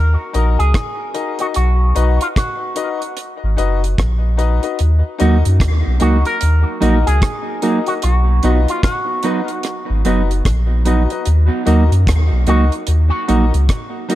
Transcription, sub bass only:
0.00 0.17 D#2 medium
0.35 0.57 A#1 medium
0.60 0.73 C#2 medium
1.57 1.93 B1 loud
1.97 2.19 B1 medium
3.44 3.57 G#1 loud
3.59 3.95 F#1 medium
3.99 4.60 A#1 medium
4.80 5.03 D#2 medium
5.21 5.43 D#2 medium
5.46 5.59 F#2 medium
5.60 5.83 D#2 medium
5.87 6.00 B1 medium
6.02 6.24 C#2 medium
6.43 6.65 D#2 loud
6.82 7.05 A#1 medium
7.08 7.21 C#2 medium
8.04 8.40 B1 loud
8.44 8.66 B1 medium
9.90 10.04 G#1 medium
10.05 10.42 F#1 medium
10.46 11.07 A#1 medium
11.27 11.50 D#2 loud
11.67 11.90 D#2 medium
11.92 12.06 F#2 medium
12.08 12.30 D#2 loud
12.32 12.46 B1 medium
12.47 12.70 C#2 medium
12.88 13.11 D#2 medium
13.29 13.52 A#1 medium
13.54 13.68 C#2 medium

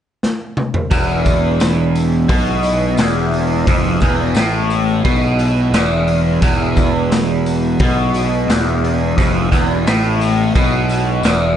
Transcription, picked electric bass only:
0.91 2.25 E1 medium
2.29 2.94 B1 medium
2.98 3.63 E1 medium
3.67 3.99 F1 loud
4.02 4.34 E1 loud
4.35 5.01 A1 medium
5.05 5.70 B1 medium
5.71 6.37 E1 loud
6.42 7.76 E1 loud
7.79 8.45 B1 medium
8.47 9.13 E1 medium
9.18 9.50 F1 loud
9.52 9.84 E1 loud
9.86 10.51 A1 loud
10.55 11.20 B1 loud
11.23 11.57 E1 loud

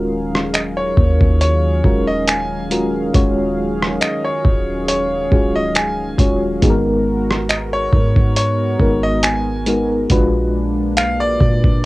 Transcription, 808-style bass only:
0.00 0.93 D#1 loud
0.97 1.20 D#2 loud
1.21 1.82 D#2 loud
1.84 3.11 D#1 loud
3.15 3.98 D#1 loud
4.45 5.28 D#1 loud
5.32 6.15 C#1 loud
6.19 6.60 D#1 loud
6.62 7.89 G#1 loud
7.93 8.76 G#2 loud
8.80 10.06 G#1 loud
10.10 10.99 A#1 loud
10.97 11.22 B1 loud
11.21 11.40 A#1 medium
11.41 11.85 A#2 loud

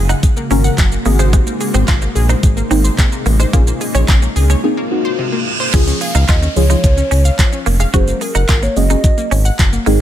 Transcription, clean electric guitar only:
0.09 0.18 D#4 medium
0.51 0.60 C#4 medium
0.78 muted clean electric guitar stroke soft
1.06 1.15 A#3 medium
1.19 1.28 G#3 medium
1.33 1.42 G#3 medium
1.61 muted clean electric guitar stroke soft
1.74 1.83 C4 medium
1.88 1.97 F4 medium
2.02 muted clean electric guitar stroke soft
2.29 2.38 D#4 medium
2.71 2.80 C4 medium
2.98 muted clean electric guitar stroke soft
3.26 3.35 A#3 medium
3.40 3.49 G#3 medium
3.53 3.62 A#3 medium
3.81 muted clean electric guitar stroke soft
3.95 4.04 C#4 medium
4.08 4.17 D#4 medium
4.22 muted clean electric guitar stroke soft
4.50 4.59 C#4 medium
5.74 5.83 C#4 medium
6.01 muted clean electric guitar stroke soft
6.15 6.24 D#4 medium
6.29 6.37 F4 medium
6.42 muted clean electric guitar stroke soft
6.70 6.79 D#4 medium
7.11 7.20 C#4 medium
7.39 muted clean electric guitar stroke soft
7.66 7.75 A#3 medium
7.80 7.89 G#3 medium
7.94 8.03 F#4 medium
8.21 muted clean electric guitar stroke soft
8.35 8.44 D#4 medium
8.49 8.58 F4 medium
8.63 muted clean electric guitar stroke soft
8.90 8.99 D#4 medium
9.31 9.40 C#4 medium
9.59 muted clean electric guitar stroke medium
9.86 9.95 A#3 medium

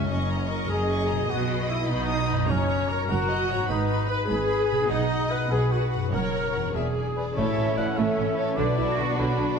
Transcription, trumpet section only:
0.09 0.48 C#4 medium
0.50 0.69 A#4 medium
0.69 1.29 G#4 medium
1.29 1.69 F#4 medium
1.69 1.78 E4 medium
1.89 2.47 D#4 medium
2.49 2.89 C#4 medium
2.89 3.09 A#4 medium
3.09 3.68 F#4 medium
3.69 4.08 D#4 medium
4.09 4.18 B4 medium
4.29 4.89 G#4 medium
4.90 5.30 D#4 medium
5.30 5.51 B4 medium
5.50 5.71 G#4 medium
5.71 6.12 F#4 medium
6.12 6.74 A#4 medium
6.74 7.37 G#4 medium
7.37 7.93 E5 soft
7.97 8.56 E5 medium
8.58 9.17 D5 soft
9.18 9.59 D5 medium

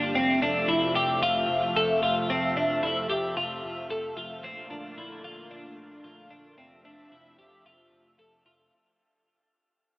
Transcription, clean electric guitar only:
0.00 0.15 D4 medium
0.15 0.42 C4 medium
0.42 0.69 D4 medium
0.69 0.95 E4 medium
0.96 1.22 G4 medium
1.23 1.76 F4 medium
1.77 2.02 A4 medium
2.03 2.30 F4 medium
2.30 2.56 C4 medium
2.57 2.83 D4 medium
2.83 3.09 E4 medium
3.10 3.36 G4 medium
3.37 3.90 F4 medium
3.90 4.16 A4 medium
4.17 4.44 F4 medium
4.44 4.70 C4 medium
4.70 4.97 D4 medium
4.98 5.24 E4 medium
5.24 5.51 F4 medium
5.51 6.05 D4 medium
6.04 6.31 F4 medium
6.31 6.57 D4 medium
6.58 6.85 C4 medium
6.85 7.12 D4 medium
7.12 7.38 E4 medium
7.39 7.65 G4 medium
7.66 8.19 F4 medium
8.19 8.45 A4 medium
8.46 8.73 F4 medium

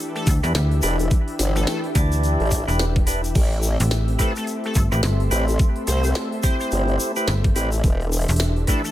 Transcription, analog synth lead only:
0.15 0.28 A4 medium
1.55 1.63 A4 medium
1.67 1.78 A4 medium
4.20 4.30 A4 medium
4.37 4.44 A4 medium
4.65 4.77 A4 medium
5.87 6.05 C5 medium
6.43 6.54 C5 medium
6.60 6.67 C5 medium
8.69 8.79 A4 medium
8.84 8.91 A4 medium

